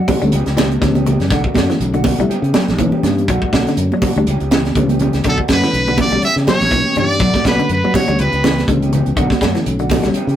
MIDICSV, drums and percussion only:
0, 0, Header, 1, 2, 480
1, 0, Start_track
1, 0, Key_signature, 2, "minor"
1, 0, Tempo, 490597
1, 1291, Time_signature, 4, 2, 24, 8
1, 10136, End_track
2, 0, Start_track
2, 0, Title_t, "Drums"
2, 77, Note_on_c, 9, 36, 70
2, 77, Note_on_c, 9, 46, 66
2, 82, Note_on_c, 9, 63, 94
2, 82, Note_on_c, 9, 64, 87
2, 175, Note_off_c, 9, 36, 0
2, 175, Note_off_c, 9, 46, 0
2, 180, Note_off_c, 9, 63, 0
2, 180, Note_off_c, 9, 64, 0
2, 215, Note_on_c, 9, 42, 36
2, 312, Note_off_c, 9, 42, 0
2, 313, Note_on_c, 9, 42, 68
2, 411, Note_off_c, 9, 42, 0
2, 450, Note_on_c, 9, 42, 34
2, 454, Note_on_c, 9, 38, 31
2, 548, Note_off_c, 9, 42, 0
2, 552, Note_off_c, 9, 38, 0
2, 558, Note_on_c, 9, 42, 52
2, 562, Note_on_c, 9, 38, 72
2, 569, Note_on_c, 9, 63, 104
2, 569, Note_on_c, 9, 64, 72
2, 656, Note_off_c, 9, 42, 0
2, 660, Note_off_c, 9, 38, 0
2, 667, Note_off_c, 9, 63, 0
2, 667, Note_off_c, 9, 64, 0
2, 699, Note_on_c, 9, 42, 32
2, 796, Note_off_c, 9, 42, 0
2, 799, Note_on_c, 9, 36, 71
2, 802, Note_on_c, 9, 42, 69
2, 804, Note_on_c, 9, 63, 84
2, 806, Note_on_c, 9, 38, 31
2, 897, Note_off_c, 9, 36, 0
2, 900, Note_off_c, 9, 42, 0
2, 901, Note_off_c, 9, 63, 0
2, 904, Note_off_c, 9, 38, 0
2, 933, Note_on_c, 9, 63, 74
2, 937, Note_on_c, 9, 42, 34
2, 1030, Note_off_c, 9, 63, 0
2, 1034, Note_off_c, 9, 42, 0
2, 1040, Note_on_c, 9, 42, 52
2, 1051, Note_on_c, 9, 63, 73
2, 1051, Note_on_c, 9, 64, 80
2, 1138, Note_off_c, 9, 42, 0
2, 1149, Note_off_c, 9, 63, 0
2, 1149, Note_off_c, 9, 64, 0
2, 1174, Note_on_c, 9, 42, 31
2, 1178, Note_on_c, 9, 38, 31
2, 1272, Note_off_c, 9, 42, 0
2, 1276, Note_off_c, 9, 38, 0
2, 1276, Note_on_c, 9, 42, 67
2, 1277, Note_on_c, 9, 36, 97
2, 1280, Note_on_c, 9, 38, 31
2, 1374, Note_off_c, 9, 42, 0
2, 1375, Note_off_c, 9, 36, 0
2, 1378, Note_off_c, 9, 38, 0
2, 1409, Note_on_c, 9, 36, 72
2, 1507, Note_off_c, 9, 36, 0
2, 1511, Note_on_c, 9, 63, 78
2, 1520, Note_on_c, 9, 36, 72
2, 1530, Note_on_c, 9, 42, 50
2, 1534, Note_on_c, 9, 38, 65
2, 1609, Note_off_c, 9, 63, 0
2, 1618, Note_off_c, 9, 36, 0
2, 1628, Note_off_c, 9, 42, 0
2, 1631, Note_off_c, 9, 38, 0
2, 1661, Note_on_c, 9, 42, 32
2, 1665, Note_on_c, 9, 38, 26
2, 1759, Note_off_c, 9, 42, 0
2, 1763, Note_off_c, 9, 38, 0
2, 1768, Note_on_c, 9, 42, 63
2, 1865, Note_off_c, 9, 42, 0
2, 1894, Note_on_c, 9, 63, 65
2, 1897, Note_on_c, 9, 42, 31
2, 1992, Note_off_c, 9, 63, 0
2, 1995, Note_off_c, 9, 42, 0
2, 1996, Note_on_c, 9, 63, 92
2, 1996, Note_on_c, 9, 64, 89
2, 2004, Note_on_c, 9, 36, 65
2, 2014, Note_on_c, 9, 46, 69
2, 2093, Note_off_c, 9, 63, 0
2, 2093, Note_off_c, 9, 64, 0
2, 2102, Note_off_c, 9, 36, 0
2, 2111, Note_off_c, 9, 46, 0
2, 2151, Note_on_c, 9, 42, 36
2, 2248, Note_off_c, 9, 42, 0
2, 2258, Note_on_c, 9, 42, 63
2, 2356, Note_off_c, 9, 42, 0
2, 2387, Note_on_c, 9, 42, 33
2, 2484, Note_off_c, 9, 42, 0
2, 2484, Note_on_c, 9, 42, 51
2, 2484, Note_on_c, 9, 63, 98
2, 2488, Note_on_c, 9, 38, 71
2, 2582, Note_off_c, 9, 42, 0
2, 2582, Note_off_c, 9, 63, 0
2, 2586, Note_off_c, 9, 38, 0
2, 2623, Note_on_c, 9, 42, 31
2, 2627, Note_on_c, 9, 38, 28
2, 2721, Note_off_c, 9, 42, 0
2, 2724, Note_off_c, 9, 38, 0
2, 2724, Note_on_c, 9, 63, 87
2, 2724, Note_on_c, 9, 64, 74
2, 2726, Note_on_c, 9, 36, 65
2, 2730, Note_on_c, 9, 42, 69
2, 2822, Note_off_c, 9, 63, 0
2, 2822, Note_off_c, 9, 64, 0
2, 2823, Note_off_c, 9, 36, 0
2, 2828, Note_off_c, 9, 42, 0
2, 2859, Note_on_c, 9, 63, 76
2, 2957, Note_off_c, 9, 63, 0
2, 2969, Note_on_c, 9, 63, 74
2, 2969, Note_on_c, 9, 64, 83
2, 2975, Note_on_c, 9, 42, 56
2, 2979, Note_on_c, 9, 38, 30
2, 3067, Note_off_c, 9, 63, 0
2, 3067, Note_off_c, 9, 64, 0
2, 3073, Note_off_c, 9, 42, 0
2, 3077, Note_off_c, 9, 38, 0
2, 3115, Note_on_c, 9, 42, 31
2, 3211, Note_on_c, 9, 36, 92
2, 3212, Note_off_c, 9, 42, 0
2, 3213, Note_on_c, 9, 42, 72
2, 3309, Note_off_c, 9, 36, 0
2, 3311, Note_off_c, 9, 42, 0
2, 3344, Note_on_c, 9, 36, 69
2, 3442, Note_off_c, 9, 36, 0
2, 3452, Note_on_c, 9, 36, 75
2, 3456, Note_on_c, 9, 42, 55
2, 3456, Note_on_c, 9, 63, 76
2, 3460, Note_on_c, 9, 38, 68
2, 3550, Note_off_c, 9, 36, 0
2, 3554, Note_off_c, 9, 42, 0
2, 3554, Note_off_c, 9, 63, 0
2, 3558, Note_off_c, 9, 38, 0
2, 3590, Note_on_c, 9, 42, 36
2, 3594, Note_on_c, 9, 38, 26
2, 3688, Note_off_c, 9, 42, 0
2, 3690, Note_on_c, 9, 42, 76
2, 3692, Note_off_c, 9, 38, 0
2, 3788, Note_off_c, 9, 42, 0
2, 3834, Note_on_c, 9, 63, 71
2, 3932, Note_off_c, 9, 63, 0
2, 3932, Note_on_c, 9, 36, 65
2, 3932, Note_on_c, 9, 46, 67
2, 3932, Note_on_c, 9, 63, 93
2, 3932, Note_on_c, 9, 64, 81
2, 4029, Note_off_c, 9, 36, 0
2, 4030, Note_off_c, 9, 46, 0
2, 4030, Note_off_c, 9, 63, 0
2, 4030, Note_off_c, 9, 64, 0
2, 4068, Note_on_c, 9, 42, 35
2, 4166, Note_off_c, 9, 42, 0
2, 4176, Note_on_c, 9, 42, 67
2, 4274, Note_off_c, 9, 42, 0
2, 4309, Note_on_c, 9, 42, 33
2, 4407, Note_off_c, 9, 42, 0
2, 4413, Note_on_c, 9, 42, 54
2, 4416, Note_on_c, 9, 38, 76
2, 4421, Note_on_c, 9, 63, 94
2, 4421, Note_on_c, 9, 64, 74
2, 4510, Note_off_c, 9, 42, 0
2, 4514, Note_off_c, 9, 38, 0
2, 4519, Note_off_c, 9, 63, 0
2, 4519, Note_off_c, 9, 64, 0
2, 4549, Note_on_c, 9, 42, 32
2, 4553, Note_on_c, 9, 38, 27
2, 4647, Note_off_c, 9, 42, 0
2, 4651, Note_off_c, 9, 38, 0
2, 4652, Note_on_c, 9, 36, 69
2, 4653, Note_on_c, 9, 42, 77
2, 4659, Note_on_c, 9, 63, 86
2, 4659, Note_on_c, 9, 64, 72
2, 4749, Note_off_c, 9, 36, 0
2, 4751, Note_off_c, 9, 42, 0
2, 4757, Note_off_c, 9, 63, 0
2, 4757, Note_off_c, 9, 64, 0
2, 4787, Note_on_c, 9, 63, 75
2, 4789, Note_on_c, 9, 42, 35
2, 4885, Note_off_c, 9, 63, 0
2, 4886, Note_off_c, 9, 42, 0
2, 4886, Note_on_c, 9, 42, 58
2, 4898, Note_on_c, 9, 64, 84
2, 4984, Note_off_c, 9, 42, 0
2, 4996, Note_off_c, 9, 64, 0
2, 5020, Note_on_c, 9, 42, 35
2, 5024, Note_on_c, 9, 38, 29
2, 5118, Note_off_c, 9, 42, 0
2, 5122, Note_off_c, 9, 38, 0
2, 5125, Note_on_c, 9, 42, 70
2, 5129, Note_on_c, 9, 38, 29
2, 5131, Note_on_c, 9, 36, 90
2, 5223, Note_off_c, 9, 42, 0
2, 5226, Note_off_c, 9, 38, 0
2, 5229, Note_off_c, 9, 36, 0
2, 5262, Note_on_c, 9, 36, 65
2, 5359, Note_off_c, 9, 36, 0
2, 5364, Note_on_c, 9, 42, 51
2, 5368, Note_on_c, 9, 38, 70
2, 5369, Note_on_c, 9, 36, 68
2, 5374, Note_on_c, 9, 63, 83
2, 5462, Note_off_c, 9, 42, 0
2, 5466, Note_off_c, 9, 38, 0
2, 5467, Note_off_c, 9, 36, 0
2, 5471, Note_off_c, 9, 63, 0
2, 5503, Note_on_c, 9, 42, 33
2, 5507, Note_on_c, 9, 38, 27
2, 5601, Note_off_c, 9, 42, 0
2, 5605, Note_off_c, 9, 38, 0
2, 5614, Note_on_c, 9, 42, 63
2, 5712, Note_off_c, 9, 42, 0
2, 5748, Note_on_c, 9, 42, 30
2, 5750, Note_on_c, 9, 63, 68
2, 5846, Note_off_c, 9, 42, 0
2, 5847, Note_off_c, 9, 63, 0
2, 5847, Note_on_c, 9, 63, 94
2, 5847, Note_on_c, 9, 64, 91
2, 5848, Note_on_c, 9, 36, 70
2, 5852, Note_on_c, 9, 46, 66
2, 5945, Note_off_c, 9, 63, 0
2, 5945, Note_off_c, 9, 64, 0
2, 5946, Note_off_c, 9, 36, 0
2, 5950, Note_off_c, 9, 46, 0
2, 5981, Note_on_c, 9, 42, 34
2, 6079, Note_off_c, 9, 42, 0
2, 6088, Note_on_c, 9, 42, 61
2, 6185, Note_off_c, 9, 42, 0
2, 6225, Note_on_c, 9, 42, 34
2, 6229, Note_on_c, 9, 38, 28
2, 6323, Note_off_c, 9, 42, 0
2, 6327, Note_off_c, 9, 38, 0
2, 6330, Note_on_c, 9, 42, 48
2, 6334, Note_on_c, 9, 38, 73
2, 6338, Note_on_c, 9, 63, 97
2, 6338, Note_on_c, 9, 64, 77
2, 6428, Note_off_c, 9, 42, 0
2, 6432, Note_off_c, 9, 38, 0
2, 6436, Note_off_c, 9, 63, 0
2, 6436, Note_off_c, 9, 64, 0
2, 6459, Note_on_c, 9, 42, 30
2, 6462, Note_on_c, 9, 38, 27
2, 6556, Note_off_c, 9, 42, 0
2, 6560, Note_off_c, 9, 38, 0
2, 6567, Note_on_c, 9, 36, 66
2, 6568, Note_on_c, 9, 42, 69
2, 6583, Note_on_c, 9, 63, 80
2, 6665, Note_off_c, 9, 36, 0
2, 6666, Note_off_c, 9, 42, 0
2, 6681, Note_off_c, 9, 63, 0
2, 6804, Note_on_c, 9, 42, 52
2, 6831, Note_on_c, 9, 63, 72
2, 6831, Note_on_c, 9, 64, 80
2, 6901, Note_off_c, 9, 42, 0
2, 6929, Note_off_c, 9, 63, 0
2, 6929, Note_off_c, 9, 64, 0
2, 6939, Note_on_c, 9, 42, 33
2, 7036, Note_off_c, 9, 42, 0
2, 7039, Note_on_c, 9, 42, 67
2, 7045, Note_on_c, 9, 36, 102
2, 7137, Note_off_c, 9, 42, 0
2, 7143, Note_off_c, 9, 36, 0
2, 7179, Note_on_c, 9, 36, 68
2, 7183, Note_on_c, 9, 38, 27
2, 7194, Note_on_c, 9, 63, 72
2, 7277, Note_off_c, 9, 36, 0
2, 7281, Note_off_c, 9, 38, 0
2, 7288, Note_on_c, 9, 36, 69
2, 7290, Note_on_c, 9, 42, 55
2, 7292, Note_off_c, 9, 63, 0
2, 7294, Note_on_c, 9, 38, 68
2, 7303, Note_on_c, 9, 63, 79
2, 7386, Note_off_c, 9, 36, 0
2, 7388, Note_off_c, 9, 42, 0
2, 7392, Note_off_c, 9, 38, 0
2, 7401, Note_off_c, 9, 63, 0
2, 7425, Note_on_c, 9, 42, 34
2, 7523, Note_off_c, 9, 42, 0
2, 7527, Note_on_c, 9, 42, 65
2, 7625, Note_off_c, 9, 42, 0
2, 7674, Note_on_c, 9, 63, 66
2, 7768, Note_on_c, 9, 36, 70
2, 7771, Note_on_c, 9, 46, 67
2, 7772, Note_off_c, 9, 63, 0
2, 7779, Note_on_c, 9, 63, 94
2, 7779, Note_on_c, 9, 64, 84
2, 7865, Note_off_c, 9, 36, 0
2, 7869, Note_off_c, 9, 46, 0
2, 7877, Note_off_c, 9, 63, 0
2, 7877, Note_off_c, 9, 64, 0
2, 7903, Note_on_c, 9, 42, 38
2, 8001, Note_off_c, 9, 42, 0
2, 8009, Note_on_c, 9, 42, 70
2, 8107, Note_off_c, 9, 42, 0
2, 8145, Note_on_c, 9, 42, 35
2, 8243, Note_off_c, 9, 42, 0
2, 8257, Note_on_c, 9, 63, 99
2, 8266, Note_on_c, 9, 42, 58
2, 8270, Note_on_c, 9, 38, 75
2, 8355, Note_off_c, 9, 63, 0
2, 8364, Note_off_c, 9, 42, 0
2, 8368, Note_off_c, 9, 38, 0
2, 8398, Note_on_c, 9, 42, 36
2, 8401, Note_on_c, 9, 38, 26
2, 8492, Note_on_c, 9, 36, 69
2, 8495, Note_off_c, 9, 42, 0
2, 8497, Note_on_c, 9, 63, 82
2, 8499, Note_off_c, 9, 38, 0
2, 8500, Note_on_c, 9, 42, 75
2, 8590, Note_off_c, 9, 36, 0
2, 8595, Note_off_c, 9, 63, 0
2, 8598, Note_off_c, 9, 42, 0
2, 8634, Note_on_c, 9, 42, 38
2, 8732, Note_off_c, 9, 42, 0
2, 8734, Note_on_c, 9, 42, 56
2, 8754, Note_on_c, 9, 64, 89
2, 8832, Note_off_c, 9, 42, 0
2, 8852, Note_off_c, 9, 64, 0
2, 8865, Note_on_c, 9, 42, 34
2, 8963, Note_off_c, 9, 42, 0
2, 8970, Note_on_c, 9, 36, 91
2, 8971, Note_on_c, 9, 42, 74
2, 9068, Note_off_c, 9, 36, 0
2, 9069, Note_off_c, 9, 42, 0
2, 9100, Note_on_c, 9, 36, 73
2, 9105, Note_on_c, 9, 38, 30
2, 9120, Note_on_c, 9, 63, 77
2, 9198, Note_off_c, 9, 36, 0
2, 9203, Note_off_c, 9, 38, 0
2, 9207, Note_on_c, 9, 36, 68
2, 9210, Note_on_c, 9, 42, 54
2, 9214, Note_on_c, 9, 38, 73
2, 9218, Note_off_c, 9, 63, 0
2, 9227, Note_on_c, 9, 63, 84
2, 9305, Note_off_c, 9, 36, 0
2, 9308, Note_off_c, 9, 42, 0
2, 9312, Note_off_c, 9, 38, 0
2, 9325, Note_off_c, 9, 63, 0
2, 9341, Note_on_c, 9, 42, 36
2, 9345, Note_on_c, 9, 38, 27
2, 9439, Note_off_c, 9, 42, 0
2, 9443, Note_off_c, 9, 38, 0
2, 9454, Note_on_c, 9, 42, 66
2, 9552, Note_off_c, 9, 42, 0
2, 9580, Note_on_c, 9, 42, 29
2, 9678, Note_off_c, 9, 42, 0
2, 9680, Note_on_c, 9, 46, 70
2, 9683, Note_on_c, 9, 36, 65
2, 9684, Note_on_c, 9, 38, 31
2, 9699, Note_on_c, 9, 63, 102
2, 9699, Note_on_c, 9, 64, 88
2, 9778, Note_off_c, 9, 46, 0
2, 9781, Note_off_c, 9, 36, 0
2, 9782, Note_off_c, 9, 38, 0
2, 9797, Note_off_c, 9, 63, 0
2, 9797, Note_off_c, 9, 64, 0
2, 9814, Note_on_c, 9, 42, 33
2, 9818, Note_on_c, 9, 38, 29
2, 9912, Note_off_c, 9, 42, 0
2, 9916, Note_off_c, 9, 38, 0
2, 9921, Note_on_c, 9, 42, 63
2, 10019, Note_off_c, 9, 42, 0
2, 10065, Note_on_c, 9, 42, 32
2, 10136, Note_off_c, 9, 42, 0
2, 10136, End_track
0, 0, End_of_file